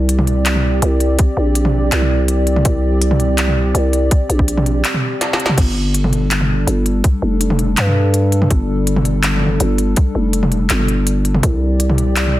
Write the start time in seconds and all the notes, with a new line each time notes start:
Already playing: C2 C4 G4 D5
0.09 closed hi-hat
0.19 mid tom
0.27 closed hi-hat
0.46 clap, closed hi-hat
0.55 mid tom
0.82 C2, closed hi-hat
1.00 closed hi-hat
1.19 kick, closed hi-hat
1.37 A#1
1.55 closed hi-hat
1.65 mid tom
1.92 C2, clap, closed hi-hat
2.02 mid tom
2.28 closed hi-hat
2.47 closed hi-hat
2.56 mid tom
2.65 C2, kick, closed hi-hat
3.02 closed hi-hat
3.11 mid tom
3.20 closed hi-hat
3.38 clap, closed hi-hat
3.48 mid tom
3.75 C2, closed hi-hat
3.93 closed hi-hat
4.11 kick, closed hi-hat
4.29 A#1, closed hi-hat
4.39 kick
4.48 closed hi-hat
4.58 mid tom
4.66 closed hi-hat
4.85 clap, closed hi-hat
4.94 mid tom
5.21 snare, closed hi-hat
5.33 snare
5.40 closed hi-hat
5.46 snare, mid tom
5.57 G1 G3 D4 A4, kick, closed hi-hat, crash
5.94 closed hi-hat
6.04 mid tom
6.13 closed hi-hat
6.31 clap, closed hi-hat
6.41 mid tom
6.67 G1, closed hi-hat
6.86 closed hi-hat
7.04 kick, closed hi-hat
7.22 F1
7.41 closed hi-hat
7.50 mid tom
7.59 closed hi-hat
7.77 G2, clap, closed hi-hat
7.87 mid tom
8.14 closed hi-hat
8.32 closed hi-hat
8.42 mid tom
8.51 G1, kick, closed hi-hat
8.87 closed hi-hat
8.96 mid tom
9.05 closed hi-hat
9.23 clap, closed hi-hat
9.33 mid tom
9.35 mid tom
9.37 mid tom
9.40 mid tom
9.42 mid tom
9.44 mid tom
9.47 mid tom
9.49 mid tom
9.60 G1, closed hi-hat
9.78 closed hi-hat
9.96 kick, closed hi-hat
10.15 F1
10.33 closed hi-hat
10.43 mid tom
10.52 closed hi-hat
10.70 G1, clap, closed hi-hat
10.80 mid tom
10.88 closed hi-hat
11.07 closed hi-hat
11.25 closed hi-hat
11.35 mid tom
11.43 C2 C4 G4 D5, kick, closed hi-hat
11.80 closed hi-hat
11.90 mid tom
11.98 closed hi-hat
12.16 clap, closed hi-hat
12.26 mid tom